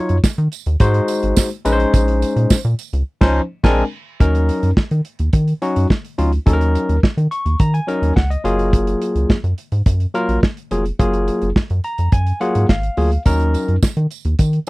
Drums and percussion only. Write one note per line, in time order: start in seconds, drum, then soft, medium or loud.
0.09 closed hi-hat soft
0.24 kick loud
0.24 snare loud
0.24 tambourine medium
0.38 closed hi-hat soft
0.52 closed hi-hat medium
0.52 tambourine medium
0.66 closed hi-hat medium
0.80 kick loud
0.80 closed hi-hat loud
0.80 tambourine soft
0.94 closed hi-hat medium
1.08 closed hi-hat medium
1.08 tambourine medium
1.23 closed hi-hat medium
1.36 kick medium
1.36 snare loud
1.36 tambourine loud
1.51 closed hi-hat medium
1.65 closed hi-hat medium
1.65 tambourine medium
1.80 closed hi-hat medium
1.94 kick loud
1.94 closed hi-hat medium
1.94 tambourine medium
2.08 closed hi-hat medium
2.22 closed hi-hat medium
2.22 tambourine soft
2.37 closed hi-hat soft
2.50 kick loud
2.50 snare loud
2.50 tambourine loud
2.65 closed hi-hat soft
2.79 closed hi-hat medium
2.79 tambourine medium
2.93 closed hi-hat medium
3.21 kick loud
3.21 snare loud
3.21 crash medium
3.64 kick loud
3.64 snare loud
3.64 crash medium
4.20 kick loud
4.20 closed hi-hat medium
4.35 closed hi-hat medium
4.49 closed hi-hat medium
4.63 closed hi-hat soft
4.77 kick loud
4.77 snare loud
4.91 closed hi-hat soft
5.05 closed hi-hat medium
5.19 closed hi-hat medium
5.33 kick loud
5.33 closed hi-hat medium
5.48 closed hi-hat soft
5.62 closed hi-hat medium
5.76 closed hi-hat medium
5.90 kick medium
5.90 snare medium
6.05 closed hi-hat medium
6.19 closed hi-hat medium
6.33 closed hi-hat soft
6.47 kick loud
6.47 closed hi-hat medium
6.61 closed hi-hat medium
6.75 closed hi-hat medium
6.89 closed hi-hat soft
7.03 kick loud
7.03 snare loud
7.18 closed hi-hat soft
7.32 closed hi-hat medium
7.46 closed hi-hat soft
7.60 kick loud
7.60 closed hi-hat loud
7.74 closed hi-hat medium
7.89 closed hi-hat medium
8.03 closed hi-hat medium
8.17 kick medium
8.17 snare medium
8.31 closed hi-hat medium
8.45 closed hi-hat medium
8.59 closed hi-hat medium
8.73 kick loud
8.73 closed hi-hat medium
8.87 closed hi-hat medium
9.02 closed hi-hat medium
9.16 closed hi-hat soft
9.30 kick loud
9.30 snare loud
9.44 closed hi-hat soft
9.58 closed hi-hat medium
9.72 closed hi-hat medium
9.86 kick loud
9.86 closed hi-hat loud
10.00 closed hi-hat soft
10.15 closed hi-hat medium
10.29 closed hi-hat medium
10.43 kick medium
10.43 snare loud
10.57 closed hi-hat medium
10.71 closed hi-hat medium
10.86 closed hi-hat soft
10.99 kick loud
10.99 closed hi-hat medium
11.14 closed hi-hat medium
11.28 closed hi-hat medium
11.42 closed hi-hat soft
11.56 kick loud
11.56 snare loud
11.70 closed hi-hat soft
11.84 closed hi-hat medium
11.98 closed hi-hat medium
12.12 kick loud
12.12 closed hi-hat medium
12.27 closed hi-hat soft
12.41 closed hi-hat medium
12.55 closed hi-hat medium
12.69 kick medium
12.69 snare loud
12.83 closed hi-hat medium
12.97 open hi-hat medium
13.12 closed hi-hat soft
13.26 kick loud
13.26 closed hi-hat medium
13.26 tambourine soft
13.40 closed hi-hat medium
13.54 closed hi-hat medium
13.54 tambourine soft
13.68 closed hi-hat soft
13.83 kick loud
13.83 snare loud
13.83 tambourine medium
13.97 closed hi-hat soft
14.11 closed hi-hat medium
14.11 tambourine soft
14.25 closed hi-hat medium
14.39 kick loud
14.39 closed hi-hat loud
14.39 tambourine soft
14.53 closed hi-hat medium